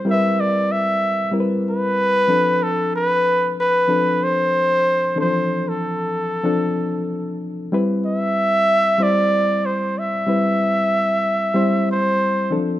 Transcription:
<<
  \new Staff \with { instrumentName = "Flugelhorn" } { \time 4/4 \key c \major \tempo 4 = 94 e''8 d''8 e''4 r8 b'4. | a'8 b'4 b'4 c''4. | c''8. a'2~ a'8. r8 | r8 e''4. d''4 c''8 e''8~ |
e''2~ e''8 c''4 r8 | }
  \new Staff \with { instrumentName = "Reed electric piano" } { \time 4/4 \key c \major <g c' e' bes' b'>2 <g c' e' bes' b'>4. <f c' d' a'>8~ | <f c' d' a'>4. r8 <f c' d' a'>2 | <e f c' d' a'>2 <f c' d' a'>2 | <g c' e' b'>2 <g c' e' c''>2 |
<g c' e' b'>2 <g c' e' c''>4. <e f c' d' a'>8 | }
>>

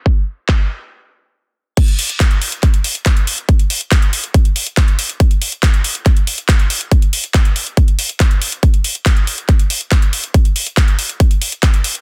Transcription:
\new DrumStaff \with { instrumentName = "Drums" } \drummode { \time 4/4 \tempo 4 = 140 bd4 <hc bd>4 r4 r4 | <cymc hh bd>16 hh16 hho16 hh16 <hc hh bd>16 hh16 hho16 hh16 <hc hh bd>16 hh16 hho16 hh16 <hc hh bd>16 hh16 hho16 hh16 | <hh bd>16 hh16 hho16 hh16 <hc hh bd>16 hh16 hho16 hh16 <hh bd>16 hh16 hho16 hh16 <hc hh bd>16 hh16 hho16 hh16 | <hh bd>16 hh16 hho16 hh16 <hc hh bd>16 hh16 hho16 hh16 <hc hh bd>16 hh16 hho16 hh16 <hc hh bd>16 hh16 hho16 hh16 |
<hh bd>16 hh16 hho16 hh16 <hc hh bd>16 hh16 hho16 hh16 <hh bd>16 hh16 hho16 hh16 <hc hh bd>16 hh16 hho16 hh16 | <hh bd>16 hh16 hho16 hh16 <hc hh bd>16 hh16 hho16 hh16 <hc hh bd>16 hh16 hho16 hh16 <hc hh bd>16 hh16 hho16 hh16 | <hh bd>16 hh16 hho16 hh16 <hc hh bd>16 hh16 hho16 hh16 <hh bd>16 hh16 hho16 hh16 <hc hh bd>16 hh16 hho16 hh16 | }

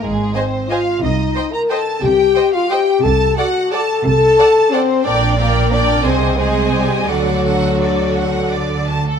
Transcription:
<<
  \new Staff \with { instrumentName = "Violin section" } { \time 3/4 \key aes \lydian \tempo 4 = 176 r4 <ees'' aes''>4 <ees'' aes''>4 | \key d \phrygian r4 <ees'' g''>4 <ees'' g''>4 | r4 <ees'' g''>4 <ees'' g''>4 | r4 <d'' fis''>4 <d'' fis''>4 |
r4 <d'' fis''>4 <d'' fis''>4 | <d'' g''>4 <d'' g''>4 <d'' g''>4 | <ees'' aes''>4 <ees'' aes''>2 | <d'' fis''>4 fis''4 d''4 |
fis''4 d''4 a''8 a'8 | }
  \new Staff \with { instrumentName = "Violin section" } { \time 3/4 \key aes \lydian aes'4 c''4 f''4 | \key d \phrygian ees''4. bes''8 a''4 | g''4. f''8 g''4 | a''4 fis''4 a''4 |
a''2 c''4 | d''4 bes'4 d''4 | c''4 aes'4 g'4 | fis'2.~ |
fis'2~ fis'8 r8 | }
  \new Staff \with { instrumentName = "Viola section" } { \time 3/4 \key aes \lydian r4 c''4 c''4 | \key d \phrygian r4 c''4 c''4 | r4 c''4 c''4 | r4 <a' d''>4 <a' d''>4 |
r4 <a' d''>4 <a' d''>4 | <bes' d''>4 <bes' d''>4 <bes' d''>4 | <aes' c''>4 <aes' c''>2 | a'2.~ |
a'2~ a'8 r8 | }
  \new Staff \with { instrumentName = "French horn section" } { \time 3/4 \key aes \lydian aes4 c'4 f'4 | \key d \phrygian ees'4. bes'8 a'4 | g'4. f'8 g'4 | a'4 fis'4 a'4 |
a'2 c'4 | d'4 bes4 d'4 | c'4 aes4 g4 | fis2.~ |
fis2~ fis8 r8 | }
  \new Staff \with { instrumentName = "Cello section" } { \clef bass \time 3/4 \key aes \lydian aes,4 r2 | \key d \phrygian c4 r2 | c4 r2 | c4 r2 |
c4 r2 | bes,2. | c2. | d2.~ |
d2~ d8 r8 | }
  \new Staff \with { instrumentName = "Double bass section" } { \clef bass \time 3/4 \key aes \lydian aes,,4 r2 | \key d \phrygian c,4 r2 | c,4 r2 | c,4 r2 |
c,4 r2 | bes,,2. | c,2. | d,2.~ |
d,2~ d,8 r8 | }
>>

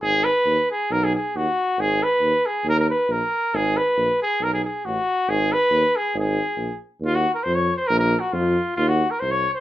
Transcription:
<<
  \new Staff \with { instrumentName = "Trumpet" } { \time 2/4 \tempo 4 = 137 aes'8 ces''4 aes'8 | bes'16 aes'16 aes'8 fis'4 | aes'8 ces''4 aes'8 | bes'16 bes'16 ces''8 bes'4 |
aes'8 ces''4 aes'8 | bes'16 aes'16 aes'8 fis'4 | aes'8 ces''4 aes'8 | aes'4. r8 |
f'16 ges'8 bes'16 c''16 des''8 c''16 | bes'16 bes'8 ges'16 f'4 | f'16 ges'8 bes'16 c''16 des''8 c''16 | }
  \new Staff \with { instrumentName = "Tuba" } { \clef bass \time 2/4 aes,,4 ees,8 r8 | b,,4 dis,8 r8 | aes,,4 ees,8 r8 | ees,4 bes,,8 r8 |
aes,,4 bes,,8 r8 | b,,4 a,,8 r8 | aes,,4 ees,8 r8 | aes,,4 bes,,8 r8 |
ees,4 f,4 | bes,,4 f,4 | ees,4 c,4 | }
>>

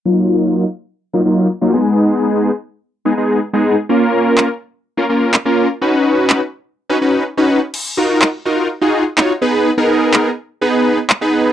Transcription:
<<
  \new Staff \with { instrumentName = "Analog polysynth" } { \time 4/4 \key ees \minor \tempo 4 = 125 <ges bes ees' f'>4~ <ges bes ees' f'>16 r4 <ges bes ees' f'>16 <ges bes ees' f'>8 r16 <ges bes ees' f'>16 <aes ces' ees' aes'>8~ | <aes ces' ees' aes'>4 r4 r16 <aes ces' ees' aes'>16 <aes ces' ees' aes'>8 r16 <aes ces' ees' aes'>8 r16 | <bes des' f' bes'>4~ <bes des' f' bes'>16 r4 <bes des' f' bes'>16 <bes des' f' bes'>8 r16 <bes des' f' bes'>8 r16 | <cis' dis' fis' b'>4~ <cis' dis' fis' b'>16 r4 <cis' dis' fis' b'>16 <cis' dis' fis' b'>8 r16 <cis' dis' fis' b'>8 r16 |
r8 <ees' f' ges' bes'>8 r8 <ees' f' ges' bes'>8 r16 <ees' f' ges' aes'>8 r16 <ees' f' ges' des''>16 r16 <ces' ees' aes' ces''>8 | r16 <ces' ees' aes' bes'>4 r8. <ces' ees' aes' ces''>8. r8 <ces' ees' aes' ces''>8. | }
  \new DrumStaff \with { instrumentName = "Drums" } \drummode { \time 4/4 r4 r4 r4 r4 | r4 r4 r4 r4 | r4 hc4 r4 hc4 | r4 hc4 r4 r4 |
cymc4 hc4 r4 hc4 | r4 hc4 r4 hc4 | }
>>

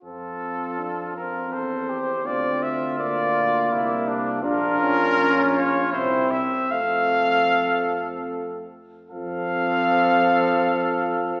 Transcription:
<<
  \new Staff \with { instrumentName = "Cornet" } { \time 3/4 \key f \major \tempo 4 = 80 a'4. bes'8 c''4 | d''8 e''8 d''4. r8 | bes'4. des''8 c''8 e''8 | f''2 r4 |
f''2. | }
  \new Staff \with { instrumentName = "Trumpet" } { \time 3/4 \key f \major f'2 a'8 g'8 | f'2 e'8 d'8 | f'2 e'8 r8 | a'2~ a'8 r8 |
a'2. | }
  \new Staff \with { instrumentName = "French horn" } { \time 3/4 \key f \major c'4 d'8 c'4.~ | c'4 bes4 bes4 | d'4 des'4 c'8 r8 | c'2~ c'8 r8 |
c'2. | }
  \new Staff \with { instrumentName = "Trombone" } { \time 3/4 \key f \major r4 c'2~ | c'4 bes2 | d'8 des'4. c'4 | a2~ a8 r8 |
f2. | }
  \new Staff \with { instrumentName = "Tuba" } { \clef bass \time 3/4 \key f \major f,2 e,4 | d,2 c,4 | bes,,4 bes,,4 c,8 r8 | f,2~ f,8 r8 |
f,2. | }
>>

